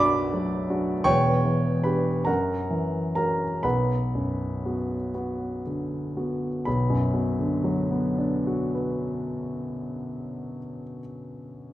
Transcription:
grand piano
Already playing: B1 F#2 D4 F#4 D5 E5 B5 D6 E6
0.34 F#3
0.69 D4 F#4
1.04 E1 E2 C#5 G5 C#6
1.44 E3
1.84 D4 G4 B4 B5
2.25 F#2 A#4 F#5 A#5
2.70 E3
3.15 C#4 F#4 A#4 A#5
3.63 B1 B4 F#5 B5
4.15 F#2
4.65 B3 F#4
5.14 B3 F#4
5.66 D3
6.17 B3 F#4
6.65 B1 B5
6.90 F#2
7.13 B2
7.39 D3
7.64 F#3
7.91 B3
8.18 D4
8.47 F#4
8.75 B4

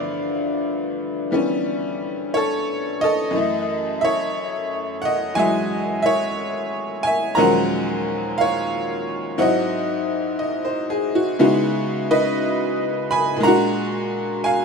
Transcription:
honky-tonk piano
Already playing: G2 D3 E3 F3 A3 B3 D5 F5
1.31 E3 G3 B3 C#4
2.34 A4 C#5
3.01 A4 D#5
3.31 F#2 E3
3.36 A3
4.01 C#5 E5
5.02 D#5 F#5
5.34 E3 F#3 G#3 G#5
5.39 E5
6.02 C#5 E5
7.03 G#5
7.07 E5
7.35 D#2 A#2 F3 F#3 G#3 C#4 F#5 A#5
8.38 C#5 F5
9.38 G#2 F#3 C4 E4 D#5 F#5
10.39 D#5
10.65 C5
10.90 G#4
11.15 F#4
11.39 C#3 G#3 B3 D#4 E4 F#4
12.11 B4 D#5
13.11 G#5 B5
13.36 A#2 G#3
13.43 D4 F#5 A#5
13.48 F#4
14.44 F5 G#5

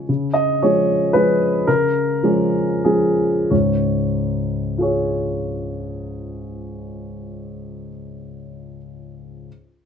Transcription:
grand piano
Already playing: C#3 F3 G#3 C#4 C#5
0.09 C#3
0.34 D#5
0.62 F3 G#3 C#4 C#5
1.13 F3 G#3 C#4 B4
1.67 C#3 A#4
2.23 F3 G#3 C#4
2.84 F3 G#3 C#4 G#4
3.51 C#2 G#2 C#5
4.78 F4 G#4
4.82 C#5

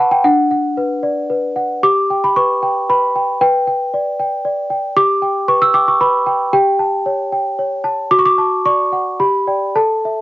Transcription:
celesta
Already playing: B4 F#5 A5 B5 C#6 D6 E6 F#6
0.11 G5
0.24 D4 F#5
0.51 F#5
0.77 B4
1.03 D5
1.30 B4
1.56 F#5
1.83 G4 D6
2.10 G5
2.24 B5
2.36 B4 C#6
2.63 G5
2.89 B4 B5
3.16 G5
3.41 B4 G5
3.67 G5
3.94 D5
4.20 G5
4.45 D5
4.70 G5
4.97 G4 D6
5.22 G5
5.48 B4 C#6
5.62 E6
5.74 G5 D6
5.88 C#6
6.01 B4 B5
6.26 G5
6.53 G4 G5
6.79 A5
7.06 C#5
7.32 G5
7.59 C#5
7.84 A5
8.11 F#4 D6
8.19 C#6
8.26 D6
8.38 A5
8.66 D5 C#6
8.93 F#5
9.20 G4 B5
9.47 D5 G5
9.76 A4 A5
10.05 E5

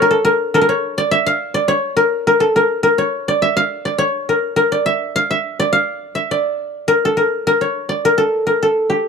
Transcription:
koto
Already playing: G4 C#5
0.02 A#4
0.11 A4
0.25 A#4
0.54 A4 A#4
0.61 A#4
0.69 C#5
0.98 D5
1.11 E5
1.26 F5
1.54 D5
1.68 C#5
1.97 A#4
2.27 A#4
2.40 A4
2.56 A#4
2.83 A#4
2.98 C#5
3.28 D5
3.42 E5
3.57 F5
3.85 D5
3.98 C#5
4.29 A#4
4.56 A#4
4.72 D5
4.86 E5
5.16 F5
5.31 E5
5.60 D5
5.73 F5
6.15 E5
6.31 D5
6.88 A#4
7.05 A4
7.17 A#4
7.47 A#4
7.61 C#5
7.89 D5
8.05 A#4
8.18 A4
8.47 A#4
8.63 A4
8.90 G4

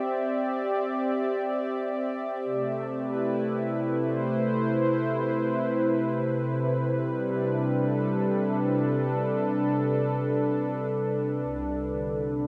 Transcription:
analog synth pad
Already playing: C4 G4 D5 E5
2.45 C3
2.52 A3
2.98 B4
3.12 E4
4.01 C5
7.03 G3
7.23 D4
7.76 A4
11.42 C2
11.88 D3
12.38 A3

